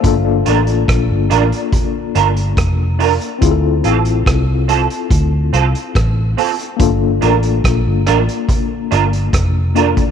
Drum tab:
HH |x-xxx-xxx-xxx-ox|x-xxx-xxx-xxx-ox|x-xxx-xxx-xxx-xx|
SD |----r-------r---|----r-------r---|----r-r-----r---|
BD |o---o---o---o---|o---o---o---o---|o---o---o---o--o|